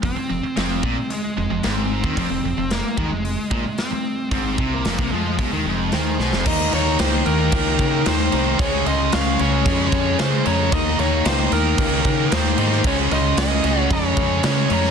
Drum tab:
CC |----------------|----------------|----------------|x-x-x-x-x-x-x-x-|
HH |o---o---o---o---|o---o---o---o---|o---o---o---o---|----------------|
SD |----o-------o---|----o-------o---|----o-------o-oo|----o-------oo--|
BD |o-----o--------o|o-----o---o-----|o-o--o--o-------|o-------o-o-----|

CC |x-x-x-x-x-x-x-x-|x-x-x-x-x-x-x-x-|x-x-x-x-x-x-x-x-|
HH |----------------|----------------|----------------|
SD |----o-------o---|----o-------oo-o|----o-------o--o|
BD |o-------o-o-----|o-------o-o-----|o-------o-o-----|